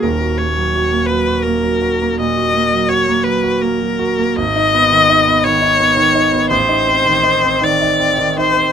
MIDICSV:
0, 0, Header, 1, 3, 480
1, 0, Start_track
1, 0, Tempo, 705882
1, 35, Time_signature, 12, 3, 24, 8
1, 995, Tempo, 724638
1, 4355, Tempo, 750000
1, 5755, End_track
2, 0, Start_track
2, 0, Title_t, "Viola"
2, 0, Program_c, 0, 41
2, 18, Note_on_c, 0, 70, 72
2, 257, Note_on_c, 0, 73, 78
2, 267, Note_off_c, 0, 70, 0
2, 719, Note_on_c, 0, 71, 82
2, 729, Note_off_c, 0, 73, 0
2, 973, Note_on_c, 0, 70, 77
2, 983, Note_off_c, 0, 71, 0
2, 1476, Note_off_c, 0, 70, 0
2, 1483, Note_on_c, 0, 75, 90
2, 1934, Note_on_c, 0, 73, 87
2, 1944, Note_off_c, 0, 75, 0
2, 2170, Note_on_c, 0, 71, 81
2, 2180, Note_off_c, 0, 73, 0
2, 2419, Note_on_c, 0, 70, 84
2, 2429, Note_off_c, 0, 71, 0
2, 2918, Note_on_c, 0, 75, 111
2, 2927, Note_off_c, 0, 70, 0
2, 3628, Note_on_c, 0, 73, 112
2, 3638, Note_off_c, 0, 75, 0
2, 4327, Note_off_c, 0, 73, 0
2, 4331, Note_on_c, 0, 72, 106
2, 5055, Note_on_c, 0, 74, 98
2, 5064, Note_off_c, 0, 72, 0
2, 5539, Note_off_c, 0, 74, 0
2, 5543, Note_on_c, 0, 72, 95
2, 5755, Note_off_c, 0, 72, 0
2, 5755, End_track
3, 0, Start_track
3, 0, Title_t, "Grand piano"
3, 0, Program_c, 1, 0
3, 0, Control_c, 1, 64, 127
3, 18, Note_on_c, 1, 27, 47
3, 24, Note_on_c, 1, 39, 49
3, 45, Control_c, 1, 64, 0
3, 143, Note_on_c, 1, 66, 44
3, 169, Control_c, 1, 64, 127
3, 273, Note_on_c, 1, 58, 42
3, 339, Note_off_c, 1, 66, 0
3, 383, Note_on_c, 1, 54, 44
3, 463, Note_off_c, 1, 58, 0
3, 513, Note_on_c, 1, 66, 46
3, 577, Note_off_c, 1, 54, 0
3, 626, Note_on_c, 1, 58, 42
3, 702, Note_off_c, 1, 66, 0
3, 756, Note_on_c, 1, 54, 46
3, 820, Note_off_c, 1, 58, 0
3, 867, Note_on_c, 1, 66, 45
3, 948, Note_off_c, 1, 54, 0
3, 990, Note_on_c, 1, 58, 47
3, 1067, Note_off_c, 1, 66, 0
3, 1109, Note_on_c, 1, 54, 44
3, 1190, Note_off_c, 1, 58, 0
3, 1230, Note_on_c, 1, 66, 48
3, 1313, Note_off_c, 1, 54, 0
3, 1362, Note_on_c, 1, 58, 46
3, 1433, Note_off_c, 1, 66, 0
3, 1452, Note_off_c, 1, 27, 0
3, 1455, Note_off_c, 1, 39, 0
3, 1474, Note_on_c, 1, 46, 45
3, 1556, Note_off_c, 1, 58, 0
3, 1590, Note_on_c, 1, 66, 46
3, 1668, Note_off_c, 1, 46, 0
3, 1710, Note_on_c, 1, 58, 50
3, 1782, Note_off_c, 1, 66, 0
3, 1835, Note_on_c, 1, 54, 46
3, 1899, Note_off_c, 1, 58, 0
3, 1942, Note_on_c, 1, 66, 55
3, 2020, Note_off_c, 1, 54, 0
3, 2064, Note_on_c, 1, 58, 55
3, 2133, Note_off_c, 1, 66, 0
3, 2180, Note_on_c, 1, 54, 53
3, 2255, Note_off_c, 1, 58, 0
3, 2303, Note_on_c, 1, 66, 47
3, 2375, Note_off_c, 1, 54, 0
3, 2423, Note_on_c, 1, 58, 49
3, 2502, Note_off_c, 1, 66, 0
3, 2542, Note_on_c, 1, 54, 49
3, 2626, Note_off_c, 1, 58, 0
3, 2670, Note_on_c, 1, 66, 54
3, 2751, Note_off_c, 1, 54, 0
3, 2798, Note_on_c, 1, 58, 54
3, 2876, Note_off_c, 1, 66, 0
3, 2926, Note_off_c, 1, 58, 0
3, 2926, Note_on_c, 1, 32, 61
3, 2940, Control_c, 1, 64, 0
3, 3035, Control_c, 1, 64, 127
3, 3046, Note_on_c, 1, 63, 60
3, 3169, Note_on_c, 1, 59, 56
3, 3239, Note_off_c, 1, 63, 0
3, 3284, Note_on_c, 1, 51, 58
3, 3358, Note_off_c, 1, 59, 0
3, 3399, Note_on_c, 1, 63, 59
3, 3473, Note_off_c, 1, 51, 0
3, 3520, Note_on_c, 1, 59, 54
3, 3588, Note_off_c, 1, 63, 0
3, 3635, Note_on_c, 1, 51, 53
3, 3707, Note_off_c, 1, 59, 0
3, 3746, Note_on_c, 1, 63, 58
3, 3825, Note_off_c, 1, 51, 0
3, 3869, Note_on_c, 1, 59, 56
3, 3941, Note_off_c, 1, 63, 0
3, 3979, Note_on_c, 1, 51, 56
3, 4063, Note_off_c, 1, 59, 0
3, 4099, Note_on_c, 1, 63, 54
3, 4178, Note_off_c, 1, 51, 0
3, 4217, Note_on_c, 1, 59, 50
3, 4298, Note_off_c, 1, 63, 0
3, 4324, Note_off_c, 1, 32, 0
3, 4334, Note_on_c, 1, 33, 66
3, 4345, Note_off_c, 1, 59, 0
3, 4366, Control_c, 1, 64, 0
3, 4453, Note_on_c, 1, 63, 57
3, 4470, Control_c, 1, 64, 127
3, 4569, Note_on_c, 1, 60, 51
3, 4648, Note_off_c, 1, 63, 0
3, 4688, Note_on_c, 1, 51, 53
3, 4767, Note_off_c, 1, 60, 0
3, 4800, Note_on_c, 1, 63, 59
3, 4888, Note_off_c, 1, 51, 0
3, 4926, Note_on_c, 1, 60, 56
3, 5005, Note_off_c, 1, 63, 0
3, 5045, Note_on_c, 1, 51, 55
3, 5130, Note_off_c, 1, 60, 0
3, 5174, Note_on_c, 1, 63, 54
3, 5250, Note_off_c, 1, 51, 0
3, 5290, Note_on_c, 1, 60, 52
3, 5374, Note_off_c, 1, 63, 0
3, 5410, Note_on_c, 1, 51, 49
3, 5492, Note_off_c, 1, 60, 0
3, 5535, Note_on_c, 1, 63, 50
3, 5613, Note_off_c, 1, 51, 0
3, 5655, Note_on_c, 1, 60, 46
3, 5737, Note_off_c, 1, 63, 0
3, 5755, Note_off_c, 1, 33, 0
3, 5755, Note_off_c, 1, 60, 0
3, 5755, End_track
0, 0, End_of_file